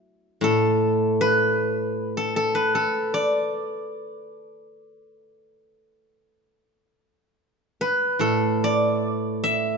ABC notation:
X:1
M:4/4
L:1/16
Q:1/4=74
K:none
V:1 name="Guzheng"
z2 A4 B4- B A A B A2 | d12 z4 | z6 B2 A2 d4 e2 |]
V:2 name="Guzheng" clef=bass
z2 A,,12 z2 | z16 | z8 A,,8 |]